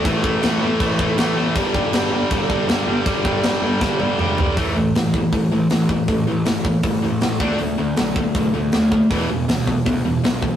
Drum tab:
CC |x-x-x-x-|x-x-x-x-|x-x-----|--------|
HH |--------|--------|--------|o-o-o-o-|
SD |--o---o-|--o---o-|--o-o---|--o---o-|
T1 |--------|--------|-----o--|--------|
T2 |--------|--------|------o-|--------|
FT |--------|--------|-------o|--------|
BD |oo--oo--|oo--oo--|oo--o---|o--oo--o|

CC |--------|--------|--------|
HH |o-o-o-o-|o-o-o-o-|o-o-o-o-|
SD |--o---o-|--o---o-|--o---o-|
T1 |--------|--------|--------|
T2 |--------|--------|--------|
FT |--------|--------|--------|
BD |o--oo--o|---oo--o|o--oo--o|